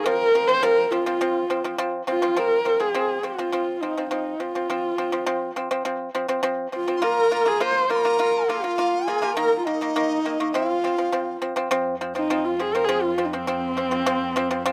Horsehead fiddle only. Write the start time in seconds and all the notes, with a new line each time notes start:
0.05 A#4
0.48 C5
0.63 A#4
0.92 F4
2.10 F4
2.39 A#4
2.81 G#4
3.24 F4
3.81 D#4
4.10 D#4
4.40 F4
6.75 F4
7.03 A#4
7.48 G#4
7.61 C5
7.91 A#4
8.50 F4
9.07 G#4
9.36 A#4
9.59 F4
9.66 D#4
10.54 F4
12.16 D#4
12.45 F4
12.61 G#4
12.74 A#4
12.85 G#4
13.02 F4
13.25 D#4
13.35 C4